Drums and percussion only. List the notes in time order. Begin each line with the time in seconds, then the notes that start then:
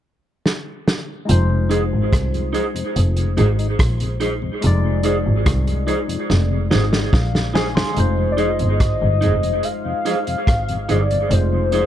0.46 snare
0.88 snare
1.29 closed hi-hat
1.71 closed hi-hat
2.13 kick, cross-stick, closed hi-hat
2.34 closed hi-hat
2.54 closed hi-hat
2.76 closed hi-hat
2.96 closed hi-hat
3.17 closed hi-hat
3.38 closed hi-hat
3.59 closed hi-hat
3.79 kick, cross-stick, closed hi-hat
4.00 closed hi-hat
4.21 closed hi-hat
4.62 closed hi-hat
5.03 closed hi-hat
5.46 kick, cross-stick, closed hi-hat
5.67 closed hi-hat
5.88 closed hi-hat
6.09 closed hi-hat
6.30 snare
6.71 snare
6.93 snare
7.13 kick, snare
7.35 snare
7.55 snare
7.77 snare
7.96 closed hi-hat
8.38 closed hi-hat
8.59 closed hi-hat
8.80 kick, cross-stick, closed hi-hat
9.22 closed hi-hat
9.43 closed hi-hat
9.63 closed hi-hat
10.06 closed hi-hat
10.27 closed hi-hat
10.47 kick, cross-stick, closed hi-hat
10.69 closed hi-hat
10.89 closed hi-hat
11.11 closed hi-hat
11.31 closed hi-hat
11.72 closed hi-hat